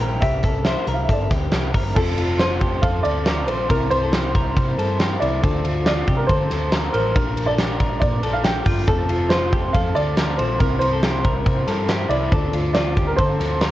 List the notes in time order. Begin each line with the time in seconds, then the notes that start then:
Already playing: C4 E4 A#4 G5
0.00 A#1 G3 C4 E4 A#4, closed hi-hat
0.21 C2 C3 E3 G3 C4 E4 G4 A#4 E5, kick, closed hi-hat
0.43 A4, kick, closed hi-hat
0.65 G3 C4 E4 A#4 C5 E5, snare, closed hi-hat
0.87 C2 A#4, closed hi-hat
0.94 F5
1.03 E5
1.08 G1 C3 E3 G3 C4 E4 A4 A#4 D5, kick, closed hi-hat
1.22 E5
1.30 D2 G4, kick, snare, closed hi-hat
1.52 C2 G3 C4 E4 A#4, snare, closed hi-hat
1.72 G1 G3 C4 E4 A#4, kick, open hi-hat
1.94 F1 F3 A3 C4 F4 A4 A5, kick, crash
2.17 F1 F4, ride
2.38 A3 C4 F4 A4 C5 C6, snare, ride
2.60 C4 F4 G4 A4, kick, ride
2.82 F2 A4 F5 F6, kick, ride
3.03 D2 C4 F4 A4 D5 D6, ride
3.24 A3 C4 F4 A4 A#4, snare, ride
3.47 A#1 C5 C6, ride
3.69 C2 C3 E3 G3 C4 E4 A#4 A#5, kick, ride
3.90 C2 C5 C6, ride
4.03 A4
4.12 G3 C4 E4 G4 A#4, snare, ride
4.35 G3 C4 E4 A#4, kick, ride
4.57 C3, kick, ride
4.78 G2 G3 C4 E4 A4 A#4, ride
4.99 G3 C4 E4 G4 A#4, snare, ride
5.19 C2 E4 D5 D6, ride
5.42 D2 D3 A3 C4 D4 F4 A4 C5, kick, ride
5.64 D2 F4, ride
5.85 A3 C4 F4 A4 D5 D6, snare, ride
6.07 C3 C4 F4 G4 A4, kick, ride
6.17 A#4 A#5
6.27 D3 A4 C5 C6, kick, ride
6.50 D2 C4 F4 A4, snare, ride
6.72 A3 C4 F4 A4 A#4, snare, ride
6.92 A1 A#4 C5 A#5, ride
7.15 A#1 A#2 D3 G3 D4 F4 G4 A#4, kick, ride
7.37 A#1, ride
7.46 A4 D5 D6
7.58 G3 D4 F4 G4 A#4, snare, ride
7.80 G3 D4 F4 A#4, kick, ride
8.00 A#2 D5 D6, kick, ride
8.22 A#1 G3 D4 F4 A4 A#4, ride
8.33 F5 F6
8.44 G3 D4 F4 G4 A4 A#4 G5 G6, snare, ride
8.66 G1 F4, kick, open hi-hat, ride
8.87 F1 F3 A3 C4 F4 A4 A5, kick, ride
9.09 F1 F4, ride
9.29 A3 C4 F4 C5 C6, snare, ride
9.34 A4
9.52 C4 F4 G4 A4, kick, ride
9.73 F2 A4 F5 F6, kick, ride
9.95 D2 F4 A4 D5 D6, ride
9.99 C4
10.17 A3 C4 F4 A4 A#4, snare, ride
10.37 A#1 C4 F4 A4 C5 C6, ride
10.59 C2 C3 E3 G3 C4 E4 A#4 A#5, kick, ride
10.79 C2 C5 C6, ride
10.93 A4
11.02 G3 C4 E4 G4 A#4, snare, ride
11.25 G3 C4 E4 A#4, kick, ride
11.46 C3, kick, ride
11.67 G2 C4 E4 A4 A#4, snare, ride
11.72 G3
11.89 G3 C4 E4 G4 A#4, snare, ride
12.10 C2 E4 D5 D6, ride
12.32 D2 D3 A3 C4 D4 F4 A4 C5, kick, ride
12.53 D2 F4, ride
12.74 A3 C4 F4 D5 D6, snare, ride
12.78 F4 A4
12.96 C4 F4 G4 A4, kick, ride
13.07 A#4 A#5
13.17 D3 A4 C5 C6, kick, ride
13.39 D2 C4 F4 A4, snare, ride
13.61 A3 C4 F4 A4 A#4, snare, ride